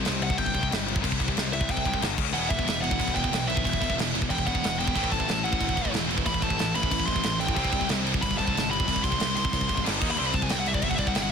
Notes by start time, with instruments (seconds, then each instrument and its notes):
Already playing: distorted electric guitar C3 G3 C4 E4 G4 C5
0.05 picked electric bass C2, distorted electric guitar C3 G3, snare, crash
0.22 distorted electric guitar C3 G3, lead electric guitar F#5, crash
0.30 distorted electric guitar C3 G3, kick
0.38 picked electric bass G1, distorted electric guitar C3 G3, lead electric guitar G5, kick, crash
0.46 kick
0.54 picked electric bass C2, distorted electric guitar C3 G3, kick, crash
0.61 distorted electric guitar C3 G3, kick
0.71 picked electric bass G1, distorted electric guitar C3 G3, snare, crash
0.87 distorted electric guitar C3 G3, crash
0.94 distorted electric guitar C3 G3, kick
1.01 picked electric bass C2, distorted electric guitar C3 G3 C4 E4 G4 C5, kick, crash
1.12 kick
1.19 distorted electric guitar C3 G3, kick, crash
1.28 distorted electric guitar C3 G3, kick
1.37 picked electric bass C2, distorted electric guitar C3 G3, snare, crash
1.53 picked electric bass C2, distorted electric guitar C3 G3, lead electric guitar E5, crash
1.61 distorted electric guitar C3 G3, kick
1.69 picked electric bass C2, distorted electric guitar C3 G3, lead electric guitar G5, kick, crash
1.77 kick
1.85 picked electric bass C2, distorted electric guitar C3 G3, kick, crash
1.94 distorted electric guitar C3 G3, kick
2.01 picked electric bass G1, distorted electric guitar G2 D3 G3, snare, crash
2.18 picked electric bass C#2, distorted electric guitar C#3 G#3 C#4, kick, crash
2.26 distorted electric guitar C#3 G#3
2.33 picked electric bass E1, distorted electric guitar E2 B2 E3 G3 B3 E4, lead electric guitar F#5, crash
2.50 picked electric bass E1, distorted electric guitar E2 B2, lead electric guitar E5, kick, crash
2.58 distorted electric guitar E2 B2, kick
2.65 picked electric bass E1, distorted electric guitar E2 B2, crash
2.69 snare
2.82 distorted electric guitar E2 B2, lead electric guitar F#5, crash
2.91 distorted electric guitar E2 B2, kick
2.99 picked electric bass B1, distorted electric guitar E2 B2, kick, crash
3.08 kick
3.14 picked electric bass E1, distorted electric guitar E2 B2, lead electric guitar G5, kick, crash
3.23 distorted electric guitar E2 B2, kick
3.32 picked electric bass B1, distorted electric guitar E2 B2, snare, crash
3.47 distorted electric guitar E2 B2, lead electric guitar E5, crash
3.56 distorted electric guitar E2 B2, kick
3.62 picked electric bass E1, distorted electric guitar E2 B2 E3 G3 B3 E4, kick
3.67 crash
3.73 kick
3.80 distorted electric guitar E2 B2, kick, crash
3.90 distorted electric guitar E2 B2, kick
3.97 picked electric bass E1, distorted electric guitar E2 B2, snare, crash
4.14 picked electric bass E1, distorted electric guitar E2 B2, crash
4.21 distorted electric guitar E2 B2, kick
4.30 picked electric bass E1, distorted electric guitar E2 B2, lead electric guitar G5, kick, crash
4.38 kick
4.46 picked electric bass E1, distorted electric guitar E2 B2, lead electric guitar F#5, kick, crash
4.54 distorted electric guitar E2 B2, kick
4.62 picked electric bass E1, distorted electric guitar E2 B2, snare, crash
4.78 distorted electric guitar E2 B2, lead electric guitar G5, crash
4.86 distorted electric guitar E2 B2, kick
4.94 picked electric bass A1, distorted electric guitar A2 E3 A3 C4 E4, kick, crash
5.04 kick
5.10 picked electric bass A1, distorted electric guitar A2 E3, lead electric guitar A5, kick, crash
5.19 distorted electric guitar A2 E3, kick
5.26 picked electric bass A1, distorted electric guitar A2 E3, snare, crash
5.43 distorted electric guitar A2 E3, lead electric guitar F#5, crash
5.50 distorted electric guitar A2 E3, kick
5.58 picked electric bass E1, distorted electric guitar A2 E3, kick, crash
5.69 kick
5.75 picked electric bass A1, distorted electric guitar A2 E3, kick, crash
5.83 distorted electric guitar A2 E3, kick
5.91 picked electric bass E1, distorted electric guitar A2 E3, crash
5.95 snare
6.08 distorted electric guitar A2 E3, crash
6.15 distorted electric guitar A2 E3, kick
6.24 picked electric bass A1, distorted electric guitar A2 E3 A3 C4, lead electric guitar B5, kick, crash
6.29 distorted electric guitar E4
6.34 kick
6.41 distorted electric guitar A2 E3, lead electric guitar A5, kick, crash
6.49 distorted electric guitar A2 E3, kick
6.57 picked electric bass A1, distorted electric guitar A2 E3, snare, crash
6.75 picked electric bass A1, distorted electric guitar A2 E3, lead electric guitar B5, crash
6.82 distorted electric guitar A2 E3, kick
6.91 picked electric bass A1, distorted electric guitar A2 E3, kick, crash
7.00 kick
7.06 picked electric bass A1, distorted electric guitar A2 E3, lead electric guitar C6, kick, crash
7.15 distorted electric guitar A2 E3, kick
7.23 picked electric bass A1, distorted electric guitar A2 E3, snare, crash
7.40 distorted electric guitar A2 E3, lead electric guitar G5, crash
7.47 distorted electric guitar A2 E3, kick
7.54 picked electric bass C2, distorted electric guitar C3 E3 G3 C4, kick, crash
7.58 distorted electric guitar C3 G3 E4
7.65 kick
7.70 picked electric bass C2, distorted electric guitar C3 G3, kick, crash
7.79 distorted electric guitar C3 G3, kick
7.88 picked electric bass C2, distorted electric guitar C3 G3, snare, crash
8.04 distorted electric guitar C3 G3, crash
8.12 distorted electric guitar C3 G3, kick
8.21 picked electric bass G1, distorted electric guitar C3 G3, lead electric guitar B5, kick, crash
8.31 kick
8.36 picked electric bass C2, distorted electric guitar C3 G3, lead electric guitar A5, kick
8.40 crash
8.45 distorted electric guitar C3 G3, kick
8.53 picked electric bass G1, distorted electric guitar C3 G3, crash
8.58 snare
8.70 distorted electric guitar C3 G3, lead electric guitar B5, crash
8.77 distorted electric guitar C3 G3, kick
8.85 picked electric bass C2, distorted electric guitar C3 E3 G3, kick, crash
8.90 distorted electric guitar C4 E4
8.96 kick
9.01 distorted electric guitar C3 G3, lead electric guitar C6, kick, crash
9.10 distorted electric guitar C3 G3, kick
9.18 picked electric bass C2, distorted electric guitar C3 G3, snare, crash
9.35 picked electric bass C2, distorted electric guitar C3 G3, lead electric guitar C6, crash
9.44 distorted electric guitar C3 G3, kick
9.51 picked electric bass C2, distorted electric guitar C3 G3, kick, crash
9.61 kick
9.68 picked electric bass F#1, distorted electric guitar C3 G3, kick, crash
9.75 distorted electric guitar C3 G3, kick
9.84 picked electric bass G1, distorted electric guitar G2 D3 G3, snare, crash
9.99 picked electric bass D#2, distorted electric guitar D#3 A#3 D#4, kick, crash
10.08 distorted electric guitar D#3 A#3, lead electric guitar B5
10.16 distorted electric guitar C3 G3 C4 E4 G4 C5, lead electric guitar C6, crash
10.20 picked electric bass C2
10.27 lead electric guitar B5
10.33 picked electric bass C2, distorted electric guitar C3 G3, lead electric guitar A5, kick, crash
10.42 distorted electric guitar C3 G3, lead electric guitar G#5, kick
10.49 picked electric bass C2, distorted electric guitar C3 G3, lead electric guitar G5, snare, crash
10.59 lead electric guitar F#5
10.66 distorted electric guitar C3 G3, lead electric guitar E5, crash
10.74 distorted electric guitar C3 G3, lead electric guitar D5, kick
10.82 picked electric bass G1, distorted electric guitar C3 G3, lead electric guitar E5, kick, crash
10.89 lead electric guitar F#5, kick
10.94 lead electric guitar E5, crash
10.99 picked electric bass C2, distorted electric guitar C3 G3, lead electric guitar D5, kick
11.07 distorted electric guitar C3 G3, lead electric guitar F#5, kick
11.15 picked electric bass G1, distorted electric guitar C3 G3, lead electric guitar G5, snare, crash
11.23 lead electric guitar F#5